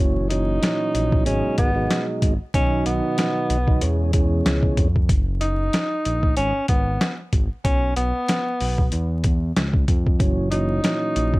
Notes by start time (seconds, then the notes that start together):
0.00 F#1 A#2 E3 F#3 C#4
0.30 A#2 E3 F#3 C#4 D#4, closed hi-hat
0.61 A#2 E3 F#3 C#4, snare, closed hi-hat
0.95 A#1, closed hi-hat
1.12 kick
1.25 G#1 B2 F#3 G#3 C#4 D#4, closed hi-hat
1.44 G#1
1.58 G#1 B3, kick, closed hi-hat
1.75 B2 F#3 G#3 D#4
1.91 snare, closed hi-hat
2.22 G#1, kick, closed hi-hat
2.54 B1 B2 D#3 F#3 C#4 D#4, kick, closed hi-hat
2.86 B1 B3, closed hi-hat
3.18 snare, closed hi-hat
3.50 B1, closed hi-hat
3.67 B2 D#3 F#3 D#4, kick
3.81 E2 B2 E3 G#3 C#4, closed hi-hat
4.13 B2 E3 G#3 C#4, kick, closed hi-hat
4.46 C#2, snare, closed hi-hat
4.63 kick
4.77 F2, kick, closed hi-hat
4.96 kick
5.09 F#1, kick, closed hi-hat
5.41 D#4, closed hi-hat
5.73 snare, closed hi-hat
6.05 A#1, closed hi-hat
6.23 kick
6.37 G#1 C#4, closed hi-hat
6.55 G#1
6.68 G#1 B3, kick, closed hi-hat
7.01 snare, closed hi-hat
7.33 G#1, kick, closed hi-hat
7.64 B1 C#4, kick, closed hi-hat
7.96 B1 B3, closed hi-hat
8.28 snare, closed hi-hat
8.61 B1, open hi-hat
8.78 kick
8.92 E2, closed hi-hat
9.24 kick, closed hi-hat
9.56 C#2, snare, closed hi-hat
9.73 kick
9.88 F2, kick, closed hi-hat
10.07 kick
10.20 F#1 A#2 E3 F#3 C#4, kick, closed hi-hat
10.51 A#2 E3 F#3 C#4 D#4, closed hi-hat
10.83 A#2 E3 F#3 C#4, snare, closed hi-hat
11.16 A#1, closed hi-hat
11.34 kick